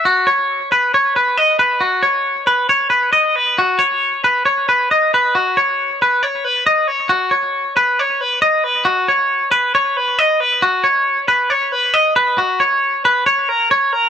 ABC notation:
X:1
M:4/4
L:1/8
Q:1/4=136
K:F#mix
V:1 name="Clean electric guitar"
F c2 B c B d B | F c2 B c B d B | F c2 B c B d B | F c2 B c B d c |
F c2 B c B d B | F c2 B c B d B | F c2 B c B d B | F c2 B c A c A |]